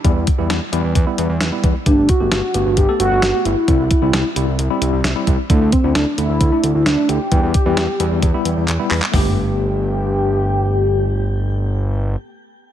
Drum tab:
HH |x-x-x-x-x-x-x-x-|x-x-x-x-x-x-x-x-|x-x-x-x-x-x-x-x-|x-x-x-x-x-x-x-x-|
CP |----------------|----------------|----------------|----------------|
SD |----o-------o---|----o-------o---|----o-------o---|----o-------o---|
FT |----------------|----------------|----------------|----------------|
BD |o-o-----o-----o-|o-o-----o-------|o-o-----------o-|o-o-----o-------|

HH |x-x-x-x-x-x-x-o-|o---------------|----------------|
CP |------------x-xx|----------------|----------------|
SD |----o-----------|----------------|----------------|
FT |----------------|o---------------|----------------|
BD |o-o-----o-------|o---------------|----------------|